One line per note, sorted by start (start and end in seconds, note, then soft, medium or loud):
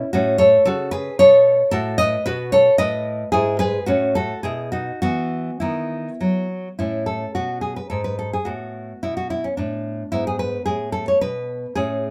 0.00 0.10 E4 medium
0.13 0.56 A2 medium
0.13 0.39 C#4 medium
0.13 0.39 F#4 loud
0.38 0.64 A4 medium
0.38 0.65 C#5 loud
0.65 1.09 C#3 medium
0.65 0.92 F#4 medium
0.65 0.91 A4 loud
0.91 1.17 G#4 medium
0.91 1.18 B4 loud
1.19 1.62 B2 medium
1.19 1.69 A4 medium
1.19 1.70 C#5 loud
1.71 2.15 A2 medium
1.71 1.98 F#4 medium
1.71 1.98 A4 loud
1.98 2.24 B4 medium
1.98 2.25 D#5 loud
2.26 2.69 B2 medium
2.26 2.51 F#4 medium
2.26 2.52 B4 loud
2.52 2.78 A4 medium
2.52 2.78 C#5 loud
2.78 3.23 A2 medium
2.78 3.30 B4 medium
2.78 3.31 D#5 loud
3.32 3.77 G#2 medium
3.32 3.59 E4 medium
3.32 3.59 G#4 loud
3.59 3.86 G#4 medium
3.59 3.86 B4 loud
3.86 4.32 A2 medium
3.86 4.14 C#4 medium
3.86 4.14 F#4 medium
4.15 4.42 F#4 medium
4.15 4.42 A4 loud
4.43 4.90 B2 medium
4.43 4.71 E4 medium
4.43 4.71 G#4 medium
4.72 5.00 D#4 medium
4.72 5.00 F#4 medium
5.02 5.49 E3 medium
5.02 5.57 B3 medium
5.02 5.58 F#4 loud
5.60 6.09 D#3 medium
5.60 6.47 B3 medium
5.60 6.46 E4 medium
6.21 6.68 F#3 medium
6.79 7.24 A2 medium
6.79 8.43 C#4 soft
6.79 7.06 E4 medium
7.06 7.34 A4 medium
7.35 7.80 B2 soft
7.35 7.61 F#4 medium
7.61 7.76 G#4 medium
7.76 7.89 B4 medium
7.90 8.36 G#2 soft
7.90 8.04 A4 medium
8.04 8.18 B4 medium
8.19 8.33 A4 medium
8.33 8.47 G#4 medium
8.45 8.92 A2 medium
8.45 10.08 B3 soft
8.45 9.00 F#4 medium
9.03 9.47 B2 medium
9.03 9.16 E4 medium
9.17 9.30 F#4 medium
9.30 9.44 E4 medium
9.44 9.57 C#4 medium
9.57 10.02 A2 soft
9.57 10.10 D4 medium
10.12 10.57 G#2 medium
10.12 11.72 B3 soft
10.12 10.26 E4 medium
10.27 10.39 G#4 medium
10.39 10.65 B4 medium
10.66 11.11 A2 medium
10.66 10.92 G#4 medium
10.92 11.07 A4 medium
11.08 11.21 C#5 medium
11.21 11.65 B2 soft
11.21 11.74 B4 medium
11.75 12.11 A2 medium
11.75 12.11 C#4 soft
11.75 12.11 G#4 medium